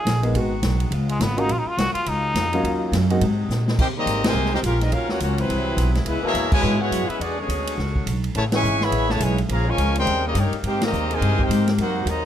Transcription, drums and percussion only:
0.07 snare, hi-hat pedal, ride
0.23 ride
0.35 ride
0.63 snare, hi-hat pedal, ride
0.80 ride
0.92 ride
1.09 ride
1.21 snare, hi-hat pedal, ride
1.38 ride
1.49 ride
1.78 snare, hi-hat pedal, ride
1.95 ride
2.06 ride
2.35 snare, hi-hat pedal, ride
2.53 ride
2.65 ride
2.93 snare, hi-hat pedal, ride
3.10 ride
3.21 ride
3.50 snare, hi-hat pedal
3.68 snare
3.79 kick, crash
4.07 hi-hat pedal, ride
4.24 snare, ride
4.45 snare
4.54 snare
4.64 hi-hat pedal, ride
4.81 snare, ride
4.92 ride
5.09 snare
5.20 hi-hat pedal, ride
5.38 ride
5.50 ride
5.78 hi-hat pedal, ride
5.95 snare, ride
6.06 ride
6.35 hi-hat pedal, ride
6.52 kick, crash
6.92 hi-hat pedal, ride
7.10 ride
7.21 ride
7.50 hi-hat pedal, ride
7.67 ride
7.78 snare
7.96 kick
8.07 hi-hat pedal, ride
8.24 ride
8.35 ride
8.52 snare, ride
8.64 hi-hat pedal
8.81 snare
8.92 ride
9.10 snare
9.20 hi-hat pedal, ride
9.38 ride
9.49 ride
9.78 hi-hat pedal, ride
9.95 ride
10.07 ride
10.35 hi-hat pedal, ride
10.53 ride
10.64 ride
10.81 snare, ride
10.93 hi-hat pedal
11.11 ride
11.22 ride
11.39 kick
11.51 hi-hat pedal, ride
11.67 snare, ride
11.78 ride
12.07 hi-hat pedal, ride

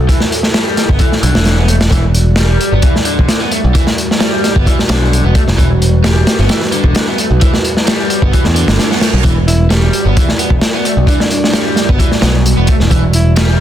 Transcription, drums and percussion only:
0.09 kick, closed hi-hat
0.20 snare
0.32 closed hi-hat
0.43 snare
0.54 snare, closed hi-hat
0.77 snare, closed hi-hat
0.89 kick
0.99 kick, closed hi-hat
1.12 snare
1.23 closed hi-hat
1.35 snare
1.45 snare, closed hi-hat
1.68 closed hi-hat
1.81 snare, closed hi-hat
1.91 kick, closed hi-hat
2.15 closed hi-hat
2.36 snare, closed hi-hat
2.61 closed hi-hat
2.82 kick, closed hi-hat
2.96 snare
3.05 closed hi-hat
3.19 kick
3.29 snare, closed hi-hat
3.52 closed hi-hat
3.75 kick, closed hi-hat
3.87 snare
3.98 closed hi-hat
4.11 snare
4.20 snare, closed hi-hat
4.44 snare, closed hi-hat
4.56 kick
4.66 kick, closed hi-hat
4.79 snare
4.89 snare, closed hi-hat
5.13 closed hi-hat
5.35 kick, closed hi-hat
5.48 snare
5.58 kick, closed hi-hat
5.82 closed hi-hat
6.04 snare, closed hi-hat
6.27 snare, closed hi-hat
6.49 snare, closed hi-hat
6.62 snare
6.72 closed hi-hat
6.84 kick
6.95 snare, closed hi-hat
7.18 closed hi-hat
7.41 kick, closed hi-hat
7.54 snare
7.65 closed hi-hat
7.77 snare
7.87 snare, closed hi-hat
8.10 closed hi-hat
8.22 kick
8.33 kick, closed hi-hat
8.44 snare
8.56 closed hi-hat
8.68 snare
8.79 snare, closed hi-hat
8.91 snare
9.01 snare, closed hi-hat
9.24 kick, closed hi-hat
9.48 closed hi-hat
9.70 snare, closed hi-hat
9.93 closed hi-hat
10.17 kick, closed hi-hat
10.29 snare
10.39 closed hi-hat
10.50 kick
10.61 snare, closed hi-hat
10.85 closed hi-hat
11.07 kick, closed hi-hat
11.20 snare
11.31 closed hi-hat
11.44 snare
11.54 snare, closed hi-hat
11.76 snare, closed hi-hat
11.89 kick
11.99 kick, closed hi-hat
12.12 snare
12.22 snare, closed hi-hat
12.46 closed hi-hat
12.67 kick, closed hi-hat
12.80 snare
12.91 kick, closed hi-hat
13.13 closed hi-hat
13.36 snare, closed hi-hat

